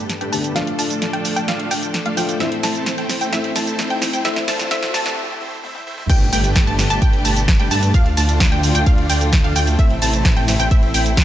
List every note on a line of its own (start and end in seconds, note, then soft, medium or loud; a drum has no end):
0.00 0.29 G2 medium
0.00 0.54 G3 medium
0.00 0.30 A3 medium
0.00 0.30 B3 medium
0.00 0.54 B3 medium
0.00 0.30 D4 medium
0.00 0.30 G4 medium
0.00 4.21 A4 medium
0.00 riser medium
0.10 snare medium
0.10 closed hi-hat medium
0.10 shaker soft
0.21 0.30 A3 medium
0.21 0.30 D4 medium
0.21 0.30 G4 medium
0.21 0.30 B4 medium
0.21 0.30 G5 medium
0.21 closed hi-hat soft
0.32 0.53 D3 medium
0.32 0.53 A3 medium
0.32 0.53 B3 medium
0.32 0.53 D4 medium
0.32 0.53 G4 medium
0.32 0.53 B4 medium
0.32 0.53 A5 loud
0.32 open hi-hat medium
0.32 shaker medium
0.44 closed hi-hat soft
0.44 shaker soft
0.55 2.14 F3 medium
0.55 2.39 F3 medium
0.55 2.14 A3 medium
0.55 0.72 A3 medium
0.55 0.72 D4 medium
0.55 2.39 D4 medium
0.55 2.15 D4 medium
0.55 0.72 F4 medium
0.55 2.15 F4 medium
0.55 0.72 D5 medium
0.55 0.72 F5 loud
0.55 snare medium
0.55 closed hi-hat medium
0.55 shaker soft
0.67 closed hi-hat soft
0.79 1.11 A3 medium
0.79 1.11 D4 medium
0.79 1.11 F4 medium
0.79 1.11 D5 medium
0.79 1.11 A5 loud
0.79 open hi-hat loud
0.79 shaker medium
0.90 closed hi-hat soft
0.90 shaker soft
1.02 snare medium
1.02 closed hi-hat medium
1.02 shaker soft
1.13 1.34 A3 medium
1.13 1.34 D4 medium
1.13 1.34 F4 medium
1.13 1.34 D5 medium
1.13 1.34 G5 medium
1.13 closed hi-hat soft
1.25 open hi-hat medium
1.25 shaker medium
1.36 1.45 A3 medium
1.36 1.45 D4 medium
1.36 1.45 F4 medium
1.36 1.45 D5 medium
1.36 1.45 G5 loud
1.36 1.45 G5 medium
1.36 closed hi-hat soft
1.36 shaker soft
1.48 1.68 A3 medium
1.48 1.68 D4 medium
1.48 1.68 F4 medium
1.48 1.68 D5 medium
1.48 1.68 F5 loud
1.48 snare medium
1.48 closed hi-hat medium
1.48 shaker soft
1.60 closed hi-hat soft
1.71 1.87 A3 medium
1.71 1.87 D4 medium
1.71 1.87 F4 medium
1.71 1.87 D5 medium
1.71 1.87 G5 loud
1.71 open hi-hat loud
1.71 shaker medium
1.83 closed hi-hat soft
1.83 shaker soft
1.94 snare medium
1.94 closed hi-hat medium
1.94 shaker soft
2.06 2.15 A3 medium
2.06 2.15 D4 medium
2.06 2.15 F4 medium
2.06 2.15 D5 medium
2.06 2.15 F5 medium
2.06 closed hi-hat soft
2.17 2.37 F3 medium
2.17 2.37 A3 medium
2.17 2.38 A3 medium
2.17 2.38 D4 medium
2.17 2.38 F4 medium
2.17 2.38 F4 loud
2.17 2.38 D5 medium
2.17 2.38 G5 loud
2.17 open hi-hat loud
2.17 shaker medium
2.29 closed hi-hat soft
2.29 shaker soft
2.39 3.30 A2 medium
2.39 3.30 E3 medium
2.39 5.14 E3 medium
2.39 3.31 A3 medium
2.39 2.56 A3 medium
2.39 4.23 C4 medium
2.39 2.56 C4 medium
2.39 3.31 C4 medium
2.39 2.56 E4 medium
2.39 3.31 E4 medium
2.39 2.56 C5 medium
2.39 2.56 E5 loud
2.39 2.56 E5 medium
2.39 snare medium
2.39 closed hi-hat medium
2.39 shaker soft
2.52 closed hi-hat soft
2.63 2.95 A3 medium
2.63 2.95 C4 medium
2.63 2.95 E4 medium
2.63 2.95 C5 medium
2.63 2.95 A5 medium
2.63 snare medium
2.63 open hi-hat loud
2.63 shaker medium
2.75 closed hi-hat soft
2.75 shaker soft
2.86 snare medium
2.86 closed hi-hat medium
2.86 shaker soft
2.98 3.18 A3 medium
2.98 3.18 C4 medium
2.98 3.18 E4 medium
2.98 3.18 C5 medium
2.98 3.18 G5 medium
2.98 closed hi-hat soft
3.09 snare medium
3.09 open hi-hat medium
3.09 shaker medium
3.21 3.30 A3 medium
3.21 3.30 C4 medium
3.21 3.30 E4 medium
3.21 3.30 C5 medium
3.21 3.30 G5 medium
3.21 closed hi-hat soft
3.21 shaker soft
3.31 4.22 A2 medium
3.31 4.23 E3 medium
3.31 4.23 A3 medium
3.31 3.49 A3 medium
3.31 3.49 C4 medium
3.31 4.23 C4 medium
3.31 3.49 E4 medium
3.31 4.24 E4 loud
3.31 3.49 C5 medium
3.31 3.49 E5 loud
3.31 snare medium
3.31 closed hi-hat medium
3.31 shaker soft
3.44 closed hi-hat soft
3.56 3.88 A3 medium
3.56 3.88 C4 medium
3.56 3.88 E4 medium
3.56 3.88 C5 medium
3.56 3.88 A5 medium
3.56 snare medium
3.56 open hi-hat loud
3.56 shaker medium
3.67 closed hi-hat soft
3.67 shaker soft
3.79 snare medium
3.79 closed hi-hat medium
3.79 shaker soft
3.90 4.11 A3 medium
3.90 4.11 C4 medium
3.90 4.11 E4 medium
3.90 4.11 C5 medium
3.90 4.11 G5 medium
3.90 closed hi-hat soft
4.02 snare medium
4.02 open hi-hat loud
4.02 shaker medium
4.13 4.22 A3 medium
4.13 4.22 C4 medium
4.13 4.22 E4 medium
4.13 4.22 C5 medium
4.13 4.22 G5 medium
4.13 4.22 G5 loud
4.13 closed hi-hat soft
4.13 shaker soft
4.24 4.68 A2 medium
4.24 4.69 E3 medium
4.24 4.69 A3 medium
4.24 4.41 A3 medium
4.24 4.41 C4 medium
4.24 4.70 C4 medium
4.24 5.16 D4 medium
4.24 4.41 E4 medium
4.24 4.70 E4 loud
4.24 5.16 C5 medium
4.24 4.41 C5 medium
4.24 4.41 E5 loud
4.24 snare medium
4.24 closed hi-hat medium
4.24 shaker soft
4.36 snare medium
4.36 closed hi-hat soft
4.48 4.69 A3 medium
4.48 4.69 C4 medium
4.48 4.69 E4 medium
4.48 4.69 C5 medium
4.48 4.69 A5 medium
4.48 4.69 A5 loud
4.48 snare medium
4.48 open hi-hat loud
4.48 shaker medium
4.59 snare medium
4.59 closed hi-hat soft
4.59 shaker soft
4.70 5.15 A2 loud
4.70 5.15 E3 medium
4.70 5.15 A3 medium
4.70 4.87 A3 medium
4.70 4.87 C4 medium
4.70 5.16 C4 medium
4.70 4.87 E4 medium
4.70 5.16 E4 loud
4.70 4.87 C5 medium
4.70 4.87 E5 loud
4.70 snare loud
4.70 closed hi-hat medium
4.70 shaker soft
4.83 snare medium
4.83 closed hi-hat soft
4.94 5.15 A3 medium
4.94 5.15 C4 medium
4.94 5.15 E4 medium
4.94 5.15 C5 medium
4.94 5.15 A5 medium
4.94 snare medium
4.94 open hi-hat loud
4.94 shaker medium
5.06 snare medium
5.06 closed hi-hat soft
5.06 shaker soft
5.17 5.33 A3 loud
5.17 5.33 C4 medium
5.17 5.33 E4 medium
5.17 5.33 C5 medium
5.17 5.33 E5 loud
5.40 5.56 A3 loud
5.40 5.56 C4 medium
5.40 5.56 E4 medium
5.40 5.56 C5 medium
5.40 5.56 E5 loud
5.63 5.79 A3 medium
5.63 5.79 C4 medium
5.63 5.79 E4 medium
5.63 5.79 C5 medium
5.63 5.79 E5 loud
5.63 high tom medium
5.75 high tom medium
5.86 6.02 A3 loud
5.86 6.02 C4 medium
5.86 6.02 E4 medium
5.86 6.02 C5 medium
5.86 6.02 E5 loud
5.98 mid tom medium
6.09 6.30 G1 loud
6.09 7.92 B2 medium
6.09 7.92 A3 medium
6.09 6.25 A3 medium
6.09 6.25 D4 medium
6.09 7.92 G4 medium
6.09 6.25 G4 medium
6.09 6.25 B4 medium
6.09 6.25 G5 loud
6.09 kick loud
6.09 closed hi-hat medium
6.09 crash loud
6.09 impact medium
6.09 shaker soft
6.21 closed hi-hat soft
6.33 6.65 G1 loud
6.33 6.65 A3 medium
6.33 6.65 D4 medium
6.33 6.65 G4 medium
6.33 6.65 B4 medium
6.33 6.65 G5 loud
6.33 open hi-hat loud
6.33 shaker medium
6.44 closed hi-hat medium
6.44 shaker soft
6.56 kick loud
6.56 snare loud
6.56 closed hi-hat medium
6.56 shaker soft
6.67 6.88 G1 loud
6.67 6.88 A3 medium
6.67 6.88 D4 medium
6.67 6.88 G4 medium
6.67 6.88 B4 medium
6.67 6.88 A5 medium
6.67 closed hi-hat soft
6.79 snare medium
6.79 open hi-hat medium
6.79 shaker medium
6.90 7.00 G1 medium
6.90 6.99 A3 medium
6.90 6.99 D4 medium
6.90 6.99 G4 medium
6.90 6.99 B4 medium
6.90 6.99 A5 loud
6.90 closed hi-hat medium
6.90 shaker soft
7.02 7.23 G1 medium
7.02 7.22 A3 loud
7.02 7.22 D4 medium
7.02 7.22 G4 medium
7.02 7.22 B4 medium
7.02 7.22 G5 loud
7.02 kick loud
7.02 closed hi-hat medium
7.02 shaker soft
7.13 closed hi-hat soft
7.25 7.57 G1 loud
7.25 7.41 A3 medium
7.25 7.41 D4 medium
7.25 7.41 G4 medium
7.25 7.41 B4 medium
7.25 7.41 A5 loud
7.25 open hi-hat loud
7.25 shaker medium
7.36 closed hi-hat medium
7.36 shaker soft
7.48 kick loud
7.48 snare loud
7.48 closed hi-hat medium
7.48 shaker soft
7.59 7.69 G1 medium
7.59 7.68 A3 medium
7.59 7.68 D4 medium
7.59 7.68 G4 medium
7.59 7.68 B4 medium
7.59 7.68 G5 medium
7.59 closed hi-hat soft
7.71 7.92 G2 loud
7.71 7.91 A3 medium
7.71 7.91 D4 medium
7.71 7.91 G4 medium
7.71 7.91 B4 medium
7.71 7.91 A5 loud
7.71 open hi-hat medium
7.71 shaker medium
7.83 closed hi-hat medium
7.83 shaker soft
7.94 8.15 D2 loud
7.94 9.77 D3 medium
7.94 11.24 A3 medium
7.94 8.10 A3 medium
7.94 8.10 D4 medium
7.94 9.77 F4 medium
7.94 8.10 F4 medium
7.94 8.10 D5 medium
7.94 8.10 F5 loud
7.94 kick loud
7.94 closed hi-hat medium
7.94 shaker soft
8.06 closed hi-hat soft
8.17 8.50 D2 medium
8.17 8.49 A3 medium
8.17 8.49 D4 medium
8.17 8.49 F4 medium
8.17 8.49 D5 medium
8.17 8.49 A5 loud
8.17 open hi-hat loud
8.17 shaker medium
8.29 closed hi-hat medium
8.29 shaker soft
8.40 kick loud
8.40 snare loud
8.40 closed hi-hat medium
8.40 shaker soft
8.52 8.73 D2 medium
8.52 8.72 A3 medium
8.52 8.72 D4 medium
8.52 8.72 F4 medium
8.52 8.72 D5 medium
8.52 8.72 G5 medium
8.52 closed hi-hat soft
8.63 open hi-hat medium
8.63 shaker medium
8.75 8.84 D2 medium
8.75 8.84 A3 medium
8.75 8.84 D4 medium
8.75 8.84 F4 medium
8.75 8.84 D5 medium
8.75 8.84 G5 loud
8.75 closed hi-hat medium
8.75 shaker soft
8.86 9.07 D2 loud
8.86 9.07 A3 loud
8.86 9.07 D4 medium
8.86 9.07 F4 medium
8.86 9.07 D5 medium
8.86 9.07 F5 loud
8.86 kick loud
8.86 closed hi-hat medium
8.86 shaker soft
8.98 closed hi-hat soft
9.10 9.42 D2 medium
9.10 9.25 A3 medium
9.10 9.25 D4 medium
9.10 9.25 F4 medium
9.10 9.25 D5 medium
9.10 9.25 G5 loud
9.10 open hi-hat loud
9.10 shaker medium
9.21 closed hi-hat soft
9.21 shaker soft
9.33 kick loud
9.33 snare loud
9.33 closed hi-hat medium
9.33 shaker soft
9.44 9.53 D2 loud
9.44 9.53 A3 medium
9.44 9.53 D4 medium
9.44 9.53 F4 medium
9.44 9.53 D5 medium
9.44 9.53 F5 medium
9.44 closed hi-hat soft
9.56 9.77 D2 medium
9.56 9.76 A3 loud
9.56 9.76 D4 medium
9.56 9.76 F4 medium
9.56 9.76 D5 medium
9.56 9.76 G5 loud
9.56 open hi-hat loud
9.56 shaker medium
9.67 closed hi-hat medium
9.67 shaker soft
9.79 10.00 A1 loud
9.79 11.24 C3 medium
9.79 9.95 A3 medium
9.79 9.95 C4 medium
9.79 9.95 E4 medium
9.79 11.24 E4 medium
9.79 9.95 C5 medium
9.79 9.95 E5 loud
9.79 kick loud
9.79 closed hi-hat soft
9.79 shaker soft
9.90 closed hi-hat soft
10.02 10.34 A1 loud
10.02 10.34 A3 medium
10.02 10.34 C4 medium
10.02 10.34 E4 medium
10.02 10.34 C5 medium
10.02 10.34 A5 loud
10.02 open hi-hat loud
10.02 shaker medium
10.13 closed hi-hat medium
10.13 shaker soft
10.25 kick loud
10.25 snare loud
10.25 closed hi-hat medium
10.25 shaker soft
10.37 10.57 A1 loud
10.37 10.57 A3 medium
10.37 10.57 C4 medium
10.37 10.57 E4 medium
10.37 10.57 C5 medium
10.37 10.57 G5 medium
10.37 closed hi-hat soft
10.48 snare medium
10.48 open hi-hat medium
10.48 shaker medium
10.60 10.69 A1 medium
10.60 10.68 A3 medium
10.60 10.68 C4 medium
10.60 10.68 E4 medium
10.60 10.68 C5 medium
10.60 10.68 G5 loud
10.60 closed hi-hat medium
10.60 shaker soft
10.71 10.92 A1 medium
10.71 10.91 A3 loud
10.71 10.91 C4 medium
10.71 10.91 E4 medium
10.71 10.91 C5 medium
10.71 10.91 E5 loud
10.71 kick loud
10.71 closed hi-hat medium
10.71 shaker soft
10.83 closed hi-hat soft
10.94 11.24 A1 medium
10.94 11.10 A3 medium
10.94 11.10 C4 medium
10.94 11.10 E4 medium
10.94 11.10 C5 medium
10.94 11.10 G5 loud
10.94 open hi-hat loud
10.94 shaker medium
11.06 closed hi-hat soft
11.06 shaker soft
11.17 kick loud
11.17 snare loud
11.17 closed hi-hat medium
11.17 shaker soft